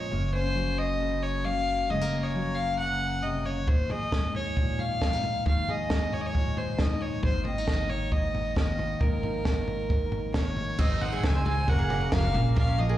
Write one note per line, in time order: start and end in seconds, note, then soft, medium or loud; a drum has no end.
0.00 0.11 G#2 soft
0.00 0.11 A#3 soft
0.00 0.35 C#4 soft
0.00 0.13 F4 soft
0.00 0.34 C#5 medium
0.11 1.86 F#1 medium
0.11 1.87 F#2 medium
0.11 1.46 A#3 soft
0.34 1.88 C#4 soft
0.34 0.79 C5 medium
0.55 1.44 F#3 soft
0.78 1.24 D#5 medium
1.01 1.45 C#3 medium
1.22 1.46 C#5 medium
1.45 1.87 F#3 soft
1.45 1.90 A#3 soft
1.45 1.91 F5 medium
1.89 3.64 F#1 medium
1.89 3.65 F#2 medium
1.89 2.01 G#3 soft
1.89 2.25 D#5 medium
2.01 3.68 A#3 soft
2.13 3.66 C#4 soft
2.23 2.56 C#5 medium
2.35 3.65 F#3 soft
2.55 2.78 F5 medium
2.79 3.24 C#3 soft
2.79 3.24 F#5 medium
3.23 3.46 C3 soft
3.23 3.47 D#5 medium
3.45 3.69 C#3 soft
3.45 3.70 C#5 medium
3.68 5.42 D#2 medium
3.68 5.45 D#3 soft
3.68 5.02 D#4 soft
3.68 3.93 C5 medium
3.68 kick medium
3.68 floor tom medium
3.90 5.68 G#4 medium
3.90 4.35 D#5 medium
3.90 floor tom medium
4.12 5.02 G#3 soft
4.12 kick medium
4.12 snare medium
4.12 floor tom medium
4.35 4.82 C#5 medium
4.35 floor tom medium
4.57 5.47 A#2 soft
4.57 kick medium
4.57 floor tom medium
4.79 5.46 F5 medium
4.79 floor tom medium
5.02 5.91 G#3 medium
5.02 5.13 C4 soft
5.02 kick medium
5.02 snare medium
5.02 floor tom medium
5.13 5.45 D#4 soft
5.24 floor tom medium
5.46 7.20 D#2 medium
5.46 7.68 D#3 medium
5.46 6.81 D#4 soft
5.46 5.71 F5 medium
5.46 kick medium
5.46 floor tom medium
5.69 7.29 G#4 medium
5.69 6.15 D#5 medium
5.69 floor tom medium
5.90 6.80 G#3 soft
5.90 kick medium
5.90 snare medium
5.90 floor tom medium
6.13 6.22 C#5 medium
6.13 floor tom medium
6.21 6.28 D#5 medium
6.26 6.59 C#5 medium
6.35 7.24 A#2 medium
6.35 kick medium
6.35 floor tom medium
6.57 6.81 C5 medium
6.57 floor tom medium
6.79 7.26 G#3 soft
6.79 7.47 D#4 soft
6.79 7.03 D#5 medium
6.79 kick medium
6.79 snare medium
6.79 floor tom medium
7.01 7.24 C#5 medium
7.01 floor tom medium
7.23 8.97 G#1 medium
7.23 8.13 G#2 medium
7.23 8.57 A#3 soft
7.23 7.45 C5 medium
7.23 kick medium
7.23 floor tom medium
7.45 7.58 C4 soft
7.45 7.91 D#5 medium
7.45 floor tom medium
7.58 9.02 D#4 soft
7.68 8.56 D#3 soft
7.68 kick medium
7.68 snare medium
7.68 floor tom medium
7.89 8.13 C#5 medium
7.89 floor tom medium
8.11 9.01 G#2 medium
8.11 8.56 D#5 medium
8.11 kick medium
8.11 floor tom medium
8.35 floor tom medium
8.56 9.44 D#3 soft
8.56 8.99 A#3 soft
8.56 9.02 D#5 medium
8.56 kick medium
8.56 snare medium
8.56 floor tom medium
8.79 floor tom medium
9.00 10.75 G#1 medium
9.00 9.89 G#2 medium
9.00 10.34 A#3 soft
9.00 10.34 A#4 medium
9.00 kick medium
9.00 floor tom medium
9.23 10.77 D#4 soft
9.23 floor tom medium
9.45 10.33 D#3 soft
9.45 kick medium
9.45 snare medium
9.45 floor tom medium
9.68 floor tom medium
9.90 10.76 G#2 soft
9.90 kick medium
9.90 floor tom medium
10.12 floor tom medium
10.34 11.23 D#3 soft
10.34 10.77 A#3 soft
10.34 10.82 C#5 medium
10.34 kick medium
10.34 snare medium
10.34 floor tom medium
10.57 floor tom medium
10.78 11.17 G#1 medium
10.78 11.65 G#2 medium
10.78 11.13 G#3 medium
10.78 11.00 C4 medium
10.78 11.13 C4 medium
10.78 11.13 D#4 medium
10.78 11.12 C5 medium
10.78 11.03 D#5 medium
10.78 kick loud
10.78 floor tom medium
10.78 crash medium
10.90 11.12 D#4 medium
11.01 11.22 C4 medium
11.01 11.65 D#4 soft
11.01 11.28 F#5 medium
11.01 floor tom medium
11.12 11.46 C4 soft
11.12 11.45 D#4 soft
11.12 11.57 G#4 medium
11.12 11.46 C5 soft
11.23 11.61 C#2 medium
11.23 11.68 D#3 soft
11.23 11.45 C4 medium
11.23 11.46 G#5 medium
11.23 kick medium
11.23 snare medium
11.23 floor tom medium
11.35 11.68 C5 medium
11.46 11.57 G#3 soft
11.46 11.68 C4 medium
11.46 11.57 C4 medium
11.46 11.57 D#4 medium
11.46 11.65 G#4 soft
11.46 11.55 C5 medium
11.46 11.71 G#5 medium
11.46 floor tom medium
11.56 11.68 C4 soft
11.56 11.69 D#4 soft
11.56 11.68 C5 soft
11.67 12.05 F#1 medium
11.67 12.31 F#2 medium
11.67 11.79 F#3 medium
11.67 11.80 G#3 medium
11.67 11.89 A#3 medium
11.67 11.80 C#4 medium
11.67 11.79 F#4 medium
11.67 11.77 A#4 medium
11.67 12.13 F#5 medium
11.67 kick medium
11.67 floor tom medium
11.79 11.89 C#4 soft
11.79 11.90 F#4 soft
11.79 12.23 G#4 medium
11.79 11.90 A#4 soft
11.90 12.11 G#3 soft
11.90 12.11 A#3 medium
11.90 12.56 C#4 medium
11.90 12.12 C#4 medium
11.90 12.12 F#4 medium
11.90 12.12 A#4 medium
11.90 floor tom medium
12.01 12.34 A#4 medium
12.12 12.31 F#1 medium
12.12 12.23 F#3 medium
12.12 12.32 F#3 medium
12.12 12.23 G#3 medium
12.12 12.33 A#3 medium
12.12 12.24 C#4 medium
12.12 12.23 F#4 medium
12.12 12.23 A#4 medium
12.12 12.54 F5 medium
12.12 kick loud
12.12 snare medium
12.12 floor tom medium
12.23 12.35 F#3 medium
12.23 12.34 G#3 medium
12.23 12.35 C#4 medium
12.23 12.34 F#4 medium
12.23 12.35 F#4 medium
12.23 12.35 A#4 medium
12.34 12.91 A#1 medium
12.34 12.98 A#2 medium
12.34 12.46 G#3 soft
12.34 12.55 A#3 medium
12.34 12.46 C#4 medium
12.34 12.45 F4 medium
12.34 12.44 A#4 medium
12.34 floor tom medium
12.45 12.56 C#4 soft
12.45 12.57 F4 soft
12.45 12.57 A#4 soft
12.56 12.90 A#2 medium
12.56 12.90 G#3 medium
12.56 12.67 A#3 medium
12.56 12.98 C#4 medium
12.56 12.90 C#4 medium
12.56 12.90 F4 medium
12.56 12.89 A#4 medium
12.56 12.80 F5 medium
12.56 kick loud
12.56 floor tom medium
12.67 12.78 C#4 medium
12.78 12.98 F3 medium
12.78 12.98 A#3 medium
12.78 12.98 D#5 medium
12.78 floor tom medium
12.89 12.98 C#4 soft
12.89 12.98 F4 soft
12.89 12.98 G#4 medium
12.89 12.98 A#4 soft